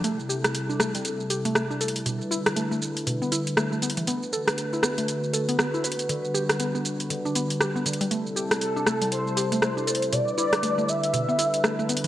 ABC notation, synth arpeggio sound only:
X:1
M:4/4
L:1/16
Q:"Swing 16ths" 1/4=119
K:Ador
V:1 name="Synth arpeggio sound"
A, z G z2 D A, G, z2 G A, A, D A z | B,, z E z A, A, z2 B,, B, E z A, A, B, E, | B, z A z2 E B, A, z2 A B, B, E B z | D, z G z B, B, z2 D, D B, z G B, D, G, |
A, z G z2 D A, G, z2 G A, A, D A z | B,, z E z A, A, z2 B,, B, E z A, A, B, E, |]